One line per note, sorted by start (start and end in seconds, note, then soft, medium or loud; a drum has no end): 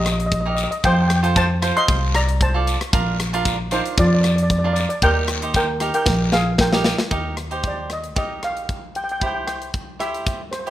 0.00 0.66 A#1 loud
0.04 0.11 D#5 medium
0.04 cross-stick medium
0.04 closed hi-hat medium
0.04 short guiro medium
0.12 0.18 D#5 medium
0.20 0.25 D#5 medium
0.20 closed hi-hat medium
0.26 0.33 D#5 medium
0.32 0.39 D#5 medium
0.32 kick medium
0.32 closed hi-hat medium
0.41 0.48 D#5 medium
0.46 0.69 D#4 medium
0.46 0.69 G4 medium
0.46 0.69 A#4 medium
0.50 0.54 D#5 medium
0.55 0.62 D#5 medium
0.55 closed hi-hat medium
0.55 short guiro medium
0.64 0.70 D#5 medium
0.71 0.78 D#5 medium
0.71 closed hi-hat medium
0.83 1.70 F2 loud
0.83 1.07 F4 medium
0.83 1.08 A4 medium
0.83 1.08 C5 medium
0.83 0.93 C5 medium
0.83 0.92 G5 loud
0.83 kick loud
0.83 closed hi-hat medium
0.83 long guiro medium
0.94 1.01 G5 medium
1.02 1.06 G5 medium
1.08 1.15 G5 medium
1.08 cross-stick medium
1.08 closed hi-hat medium
1.16 1.22 G5 medium
1.23 1.47 F4 medium
1.23 1.47 A4 medium
1.23 1.47 C5 medium
1.23 1.30 G5 medium
1.23 closed hi-hat medium
1.36 1.74 C5 medium
1.36 1.78 A5 loud
1.36 kick medium
1.36 closed hi-hat medium
1.36 short guiro medium
1.62 2.17 F4 medium
1.62 2.17 A4 medium
1.62 2.18 C5 medium
1.62 cross-stick medium
1.62 closed hi-hat medium
1.62 short guiro medium
1.77 2.12 D#5 medium
1.77 2.16 C6 loud
1.77 closed hi-hat medium
1.88 2.75 C2 loud
1.88 kick loud
1.88 closed hi-hat medium
1.88 long guiro medium
2.15 2.40 D5 medium
2.15 2.42 A#5 loud
2.15 cross-stick medium
2.15 closed hi-hat medium
2.29 closed hi-hat medium
2.41 2.79 C5 medium
2.41 2.79 A5 medium
2.41 kick medium
2.41 closed hi-hat medium
2.54 2.78 F4 medium
2.54 2.78 A4 medium
2.54 2.78 D5 medium
2.67 closed hi-hat medium
2.67 short guiro medium
2.81 cross-stick medium
2.81 closed hi-hat medium
2.93 3.79 A#1 medium
2.93 3.17 D4 medium
2.93 3.17 F4 medium
2.93 3.17 A#4 loud
2.93 kick loud
2.93 closed hi-hat medium
2.93 long guiro medium
3.20 cross-stick medium
3.20 closed hi-hat medium
3.33 3.56 D4 medium
3.33 3.57 F4 medium
3.33 3.57 A#4 medium
3.33 closed hi-hat medium
3.45 kick medium
3.45 closed hi-hat medium
3.45 short guiro medium
3.71 4.26 D4 medium
3.71 3.97 D#4 medium
3.71 4.26 F4 medium
3.71 4.27 A#4 medium
3.71 3.96 C5 medium
3.71 closed hi-hat medium
3.71 short guiro medium
3.86 closed hi-hat medium
3.97 4.84 F2 loud
3.97 4.06 F4 medium
3.97 4.06 D5 medium
3.97 kick loud
3.97 closed hi-hat medium
3.97 long guiro medium
4.07 4.13 D5 medium
4.14 4.20 D5 medium
4.21 4.28 D5 medium
4.21 cross-stick medium
4.21 closed hi-hat medium
4.21 short guiro medium
4.29 4.35 D5 medium
4.36 4.41 D5 medium
4.36 closed hi-hat medium
4.43 4.49 D5 medium
4.50 4.57 D5 medium
4.50 kick medium
4.50 closed hi-hat medium
4.58 4.64 D5 medium
4.64 4.87 D4 medium
4.64 4.87 F4 medium
4.64 4.88 A#4 medium
4.64 4.72 D5 medium
4.73 4.79 D5 medium
4.73 closed hi-hat medium
4.73 short guiro medium
4.80 4.87 D5 medium
4.89 4.95 D5 medium
4.89 closed hi-hat medium
5.02 5.88 D#2 loud
5.02 5.26 D#4 medium
5.02 5.26 G4 medium
5.02 5.26 A#4 medium
5.02 5.52 A#4 medium
5.02 5.55 G5 loud
5.02 kick loud
5.02 closed hi-hat medium
5.02 long guiro medium
5.28 cross-stick medium
5.28 closed hi-hat medium
5.42 5.66 D#4 medium
5.42 5.66 G4 medium
5.42 5.66 C5 medium
5.42 closed hi-hat medium
5.54 5.93 A#4 medium
5.54 5.94 G5 loud
5.54 kick medium
5.54 closed hi-hat medium
5.54 short guiro medium
5.80 6.36 D#4 medium
5.80 6.36 G4 medium
5.80 6.36 A#4 medium
5.80 cross-stick medium
5.80 closed hi-hat medium
5.94 6.30 A#4 medium
5.94 6.34 G5 medium
5.94 closed hi-hat medium
6.06 6.93 A#1 loud
6.06 kick loud
6.06 snare medium
6.06 long guiro medium
6.32 6.58 G#4 medium
6.32 6.60 F5 medium
6.32 snare medium
6.32 short guiro medium
6.58 6.97 A#4 medium
6.58 6.97 G5 medium
6.58 kick medium
6.58 snare medium
6.73 6.96 D#4 medium
6.73 6.97 G4 medium
6.73 6.97 A#4 medium
6.73 snare medium
6.84 snare loud
6.84 short guiro medium
6.98 snare medium
7.11 8.16 D#2 medium
7.11 7.35 D#4 medium
7.11 7.35 G4 medium
7.11 7.35 A#4 medium
7.11 kick medium
7.11 closed hi-hat soft
7.37 cross-stick medium
7.37 closed hi-hat medium
7.51 7.90 D#4 medium
7.51 7.90 G4 medium
7.51 7.90 C5 medium
7.51 closed hi-hat soft
7.63 kick medium
7.63 closed hi-hat medium
7.68 7.79 D5 medium
7.90 8.17 D#5 medium
7.90 cross-stick medium
7.90 closed hi-hat medium
8.04 closed hi-hat soft
8.16 9.21 A#1 medium
8.16 8.80 D#4 medium
8.16 8.80 G4 medium
8.16 8.80 A#4 medium
8.16 8.44 D#5 medium
8.16 kick medium
8.16 closed hi-hat medium
8.43 8.98 F5 medium
8.43 cross-stick medium
8.43 closed hi-hat medium
8.57 closed hi-hat soft
8.69 kick medium
8.69 closed hi-hat soft
8.95 9.03 G5 medium
8.95 closed hi-hat medium
9.04 9.10 G5 medium
9.09 9.19 G5 medium
9.09 closed hi-hat soft
9.20 10.26 C2 medium
9.20 9.69 E4 medium
9.20 9.69 G4 soft
9.20 9.70 C5 medium
9.20 9.25 G5 medium
9.20 kick medium
9.20 closed hi-hat soft
9.26 9.33 G5 medium
9.34 9.41 G5 medium
9.47 9.96 G5 medium
9.47 cross-stick medium
9.47 closed hi-hat medium
9.62 closed hi-hat soft
9.74 kick medium
9.74 closed hi-hat soft
9.99 10.40 E4 medium
9.99 10.41 G4 medium
9.99 10.41 C5 medium
9.99 10.54 E5 medium
9.99 cross-stick medium
9.99 closed hi-hat medium
10.14 closed hi-hat medium
10.26 10.70 G2 medium
10.26 kick loud
10.26 closed hi-hat medium
10.51 10.58 C5 medium
10.51 cross-stick medium
10.51 closed hi-hat medium
10.59 10.66 C5 soft
10.66 10.70 E4 medium
10.66 10.70 G4 medium
10.66 closed hi-hat soft